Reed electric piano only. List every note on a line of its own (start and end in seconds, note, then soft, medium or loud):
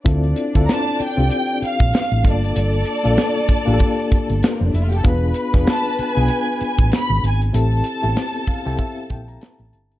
0.05 0.39 C4 medium
0.05 0.39 E4 medium
0.05 0.40 F4 medium
0.05 0.40 A4 medium
0.55 0.97 C4 medium
0.55 0.98 E4 medium
0.55 0.98 F4 medium
0.55 0.98 A4 medium
1.17 2.06 C4 medium
1.17 2.06 D4 medium
1.17 2.06 F4 medium
1.17 2.07 G4 medium
2.23 2.86 A#3 medium
2.23 2.87 D4 medium
2.23 2.87 F4 medium
2.23 2.87 A4 medium
3.03 3.47 A#3 medium
3.03 3.47 D4 medium
3.03 3.47 F4 medium
3.03 3.47 A4 medium
3.65 4.55 A#3 medium
3.65 4.55 D4 medium
3.65 4.55 F4 medium
3.65 3.73 G4 medium
3.74 4.59 A4 medium
5.04 5.38 B3 medium
5.04 5.38 D4 medium
5.04 5.39 F4 medium
5.04 5.39 G#4 medium
5.53 5.96 B3 medium
5.53 5.96 D4 medium
5.53 5.97 F4 medium
5.53 5.97 G#4 medium
6.15 7.04 B3 medium
6.15 7.05 D4 medium
6.15 7.05 F4 medium
6.15 7.05 G#4 medium
7.53 7.88 C4 medium
7.53 7.88 E4 medium
7.53 7.88 G4 medium
7.53 7.88 A4 medium
8.02 8.08 B3 soft
8.02 8.46 E4 medium
8.02 8.46 G4 medium
8.02 8.46 A4 medium
8.08 8.48 C4 medium
8.48 8.77 F5 medium
8.65 9.54 C4 medium
8.65 9.54 E4 medium
8.65 9.55 G4 medium
8.65 9.55 A4 medium
8.79 9.08 E5 medium
9.10 9.27 G5 medium
9.28 9.41 A#5 medium
9.41 9.70 A5 medium
9.73 9.99 A5 medium